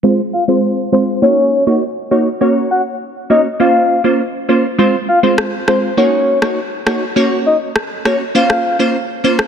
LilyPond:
<<
  \new Staff \with { instrumentName = "Soft synth lead" } { \time 4/4 \key f \phrygian \tempo 4 = 101 r8 f''16 r8. c''16 r16 des''8. r4 r16 | r8 ges''16 r8. ees''16 r16 f''8. r4 r16 | r8 f''16 r8. c''16 r16 des''8. r4 r16 | r8 ees''16 r8. des''16 r16 f''8. r4 r16 | }
  \new Staff \with { instrumentName = "Synth stab" } { \time 4/4 \key f \phrygian <aes c' f' c''>16 r8 <aes c' f' c''>8. <aes c' f' c''>8 <bes ees' ges' des''>8. <bes ees' ges' des''>16 r8 <bes ees' ges' des''>16 r16 | <bes des' ges' des''>4 r8 <bes des' ges' des''>16 r16 <bes des' f' c''>8. <bes des' f' c''>16 r8 <bes des' f' c''>16 r16 | <aes c' f' c''>16 r8 <aes c' f' c''>8. <aes c' f' c''>8 <bes ees' ges' des''>8. <bes ees' ges' des''>16 r8 <bes ees' ges' des''>16 r16 | <bes des' ges' des''>4 r8 <bes des' ges' des''>16 r16 <bes des' f' c''>8. <bes des' f' c''>16 r8 <bes des' f' c''>16 r16 | }
  \new DrumStaff \with { instrumentName = "Drums" } \drummode { \time 4/4 r4 r4 r4 r4 | r4 r4 r4 r4 | r4 ss8 ss8 r8. ss16 r8 ss8 | r4 ss8 ss8 r16 ss8. r8. ss16 | }
>>